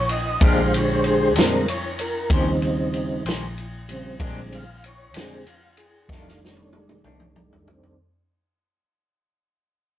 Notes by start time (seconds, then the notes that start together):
Already playing: A#1
0.09 D#5, ride
0.41 A#1 A#2 D3 G#3 D4 G4 C5 F5, kick, ride
0.74 C#5, ride
1.04 G#4, ride
1.36 F2 A#2 D3 G3 G#3 C4 D4 G4 A#4, snare, ride
1.68 C#5, ride
1.99 A#4, ride
2.30 D#2 C#3 D#3 F3 G3 C4 C#4 D#4 G4 C5, kick, ride
2.62 D#4, ride
2.94 ride
3.25 A#1 D#3 C#4 G4 C5, snare, ride
3.58 ride
3.89 C#3 F3 G3 C4, ride
4.19 A#1 A#2 D3 G3 G#3 C4 D4 G4, kick, ride
4.52 F5, ride
4.84 C#5, ride
5.14 F2 A#2 D3 G#3 C4 D4 G4 G#4, snare, ride
5.46 F4, ride
5.77 G#4, ride
6.08 F1 F2 D#3 G3 A3 D4 F4, kick, snare
6.28 snare
6.43 C#4, snare
6.57 high tom
6.73 G#3, high tom
6.89 mid tom
7.04 C2 F2 D#3 A3 C#4 D4, mid tom
7.20 mid tom
7.36 G#3, mid tom
7.53 floor tom
7.67 D#3 C4, floor tom
7.83 floor tom